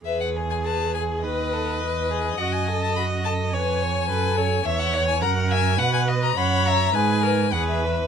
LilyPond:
<<
  \new Staff \with { instrumentName = "Violin" } { \time 2/4 \key e \major \tempo 4 = 104 e''16 fis''8 gis''16 a''8 gis''8 | dis''2 | fis''16 gis''8 a''16 b''8 a''8 | gis''2 |
\key fis \mixolydian e''16 fis''8 gis''16 ais''8 gis''8 | fis''16 gis''8 ais''16 b''8 ais''8 | gis''4 fis''16 e''8. | }
  \new Staff \with { instrumentName = "Viola" } { \time 2/4 \key e \major gis'2 | b'2 | dis''2 | cis''4 b'8 a'8 |
\key fis \mixolydian cis''4 ais'4 | b'4 cis''4 | b'8 ais'8 b'4 | }
  \new Staff \with { instrumentName = "Violin" } { \time 2/4 \key e \major b'8 gis'8 b'8 gis'8 | b'8 a'8 b'8 gis'8 | fis'8 a'8 fis'8 a'8 | b'8 cis''8 a'8 cis''8 |
\key fis \mixolydian e''8 cis''8 fis''8 e''8 | fis''8 dis''8 fis''8 e''8 | gis'8 b'8 gis'8 b'8 | }
  \new Staff \with { instrumentName = "Cello" } { \clef bass \time 2/4 \key e \major e,2 | dis,4 e,4 | fis,2 | eis,4 fis,4 |
\key fis \mixolydian e,4 fis,4 | b,4 fis,4 | gis,4 e,4 | }
>>